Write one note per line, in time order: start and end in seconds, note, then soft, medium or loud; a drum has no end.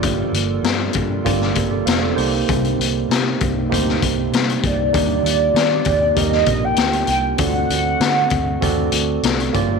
0.00 0.22 G1 loud
0.00 0.33 G2 medium
0.00 4.90 D3 medium
0.00 0.34 D3 medium
0.00 0.34 F3 medium
0.00 4.89 G3 medium
0.00 0.70 A#3 medium
0.00 0.34 A#3 medium
0.00 0.70 F4 medium
0.00 2.15 F4 medium
0.00 0.71 G4 medium
0.00 2.15 A4 medium
0.00 2.15 A#4 medium
0.00 0.71 D5 loud
0.00 kick loud
0.00 closed hi-hat loud
0.04 0.33 D4 loud
0.04 0.32 G4 loud
0.33 0.58 G1 loud
0.33 0.62 F3 soft
0.33 0.64 A#3 medium
0.33 0.65 D4 medium
0.33 0.64 G4 medium
0.33 closed hi-hat medium
0.63 0.88 G2 loud
0.63 0.95 F3 medium
0.63 0.95 A#3 medium
0.63 0.93 D4 medium
0.63 0.92 G4 medium
0.63 snare loud
0.63 closed hi-hat medium
0.93 1.19 G2 loud
0.93 1.23 F3 medium
0.93 1.24 A#3 medium
0.93 1.25 D4 medium
0.93 1.25 G4 medium
0.93 kick loud
0.93 closed hi-hat medium
1.24 1.50 G1 loud
1.24 1.56 G2 medium
1.24 1.56 D3 medium
1.24 1.56 F3 medium
1.24 2.13 A#3 loud
1.24 1.55 A#3 medium
1.24 1.54 D4 loud
1.24 2.17 F4 medium
1.24 2.15 G4 medium
1.24 1.52 G4 loud
1.24 1.57 D5 medium
1.24 kick loud
1.24 closed hi-hat loud
1.41 snare soft
1.54 1.81 G1 loud
1.54 1.83 F3 soft
1.54 1.85 A#3 soft
1.54 1.86 D4 medium
1.54 1.86 G4 medium
1.54 kick loud
1.54 closed hi-hat medium
1.71 1.86 A4 medium
1.71 1.86 D5 medium
1.84 2.11 F1 medium
1.84 2.16 F3 medium
1.84 2.17 A#3 medium
1.84 2.18 D4 medium
1.84 2.15 G4 medium
1.84 2.01 C5 medium
1.84 2.01 F5 medium
1.84 snare loud
1.84 closed hi-hat medium
2.01 2.31 A4 medium
2.01 2.31 D5 medium
2.14 2.42 C2 loud
2.14 4.91 C3 medium
2.14 3.14 A#3 medium
2.14 7.35 A#3 medium
2.14 4.91 C4 medium
2.14 3.15 D#4 medium
2.14 3.15 G4 medium
2.14 2.47 G4 medium
2.14 3.15 C5 loud
2.14 open hi-hat medium
2.18 2.48 A#3 medium
2.18 2.49 D#4 medium
2.48 2.73 C2 loud
2.48 2.79 C3 medium
2.48 2.79 G3 medium
2.48 2.80 A#3 medium
2.48 2.80 D#4 loud
2.48 2.78 G4 medium
2.48 kick loud
2.48 closed hi-hat loud
2.64 closed hi-hat soft
2.78 3.03 C2 medium
2.78 3.11 D#4 medium
2.78 3.10 G4 medium
2.78 closed hi-hat medium
2.84 3.09 A#3 medium
3.09 3.34 C3 medium
3.09 3.40 G3 medium
3.09 3.41 A#3 medium
3.09 3.39 D#4 medium
3.09 3.37 G4 medium
3.09 snare loud
3.09 closed hi-hat medium
3.38 3.66 C2 medium
3.38 3.70 A#3 medium
3.38 3.70 D#4 medium
3.38 3.70 G4 medium
3.38 kick loud
3.38 closed hi-hat medium
3.69 3.96 D2 medium
3.69 4.01 C3 medium
3.69 4.02 G3 medium
3.69 4.68 A#3 medium
3.69 4.02 A#3 medium
3.69 4.68 D#4 medium
3.69 4.02 D#4 loud
3.69 4.69 G4 medium
3.69 4.00 G4 loud
3.69 4.69 C5 medium
3.69 kick medium
3.74 closed hi-hat loud
3.89 snare soft
4.02 4.27 C2 loud
4.02 4.33 A#3 soft
4.02 kick medium
4.02 closed hi-hat loud
4.32 4.57 C3 medium
4.32 4.63 G3 medium
4.32 4.64 A#3 medium
4.32 4.63 D#4 medium
4.32 snare loud
4.32 closed hi-hat medium
4.36 4.61 G4 medium
4.49 closed hi-hat medium
4.63 4.88 C2 medium
4.63 4.95 A#3 medium
4.63 4.95 D#4 medium
4.63 4.94 G4 medium
4.63 6.19 D5 medium
4.63 kick loud
4.63 closed hi-hat medium
4.93 5.19 D#2 loud
4.93 5.25 D#3 medium
4.93 7.37 G3 medium
4.93 5.25 G3 medium
4.93 5.91 A#3 medium
4.93 5.26 A#3 medium
4.93 5.26 D4 medium
4.93 5.91 D#4 medium
4.93 7.37 F4 medium
4.93 7.37 G4 medium
4.93 5.92 G4 medium
4.93 5.92 D5 medium
4.93 kick loud
4.93 closed hi-hat loud
4.97 5.24 G4 medium
5.24 5.49 D#2 loud
5.24 5.57 D4 soft
5.24 5.56 G4 medium
5.24 closed hi-hat medium
5.30 5.58 A#3 soft
5.54 5.79 D#3 loud
5.54 5.87 G3 medium
5.54 snare loud
5.54 closed hi-hat medium
5.60 5.85 G4 medium
5.85 6.11 D#2 medium
5.85 6.18 D4 medium
5.85 6.17 G4 medium
5.85 kick loud
5.85 closed hi-hat medium
5.90 6.17 A#3 medium
6.15 6.41 D#2 medium
6.15 6.47 D#3 medium
6.15 6.48 G3 medium
6.15 7.14 A#3 medium
6.15 6.48 A#3 medium
6.15 7.14 D#4 medium
6.15 7.14 G4 medium
6.15 7.15 A#4 medium
6.15 6.66 D#5 loud
6.15 kick medium
6.15 closed hi-hat loud
6.19 6.47 G4 medium
6.32 snare soft
6.46 6.71 A#1 loud
6.46 6.79 D4 soft
6.46 6.78 G4 medium
6.46 kick medium
6.46 closed hi-hat medium
6.65 7.10 G5 loud
6.76 7.02 D2 medium
6.76 7.09 G3 medium
6.76 7.10 A#3 medium
6.76 snare loud
6.76 closed hi-hat medium
6.81 7.10 D4 medium
6.81 7.09 G4 medium
6.93 closed hi-hat medium
7.07 7.33 C2 loud
7.07 7.40 G4 medium
7.07 7.24 G5 medium
7.07 closed hi-hat medium
7.12 7.42 A#3 soft
7.12 7.41 D4 medium
7.37 7.64 D2 loud
7.37 7.71 D3 medium
7.37 8.36 C4 medium
7.37 9.52 C4 medium
7.37 8.37 F#4 medium
7.37 9.52 F#4 medium
7.37 8.37 A4 medium
7.37 8.38 D5 medium
7.37 9.20 F#5 loud
7.37 kick loud
7.37 closed hi-hat loud
7.41 7.71 A3 medium
7.41 7.72 C4 medium
7.41 7.70 F#4 medium
7.70 7.94 D2 loud
7.70 8.01 F#4 medium
7.70 closed hi-hat medium
7.74 8.01 A3 soft
7.74 8.02 C4 soft
8.00 8.25 D3 loud
8.00 8.32 D3 medium
8.00 8.32 A3 medium
8.00 8.33 C4 medium
8.00 snare loud
8.00 closed hi-hat medium
8.05 8.31 F#4 medium
8.30 8.56 D2 medium
8.30 8.62 C4 medium
8.30 8.63 F#4 medium
8.30 kick loud
8.30 closed hi-hat medium
8.35 8.62 A3 soft
8.61 8.87 D#2 loud
8.61 8.93 D3 medium
8.61 8.93 A3 medium
8.61 9.54 C4 medium
8.61 8.93 C4 medium
8.61 9.54 F#4 medium
8.61 8.91 F#4 loud
8.61 9.54 A4 medium
8.61 9.54 D5 loud
8.61 kick medium
8.61 closed hi-hat medium
8.92 9.17 D2 loud
8.92 9.24 C4 medium
8.92 9.23 F#4 medium
8.92 closed hi-hat medium
8.96 9.23 A3 medium
9.23 9.48 C2 medium
9.23 9.54 D3 medium
9.23 9.55 A3 medium
9.23 9.56 C4 medium
9.23 9.55 F#4 medium
9.23 snare loud
9.23 closed hi-hat medium
9.40 closed hi-hat medium
9.53 9.80 G1 loud
9.53 9.80 G3 medium
9.53 9.80 A#3 medium
9.53 9.80 D4 medium
9.53 9.80 F4 medium
9.53 9.80 G4 medium
9.53 9.80 A4 medium
9.53 9.80 A#4 medium
9.53 9.80 D5 loud
9.53 kick medium
9.53 closed hi-hat medium
9.57 9.80 F3 medium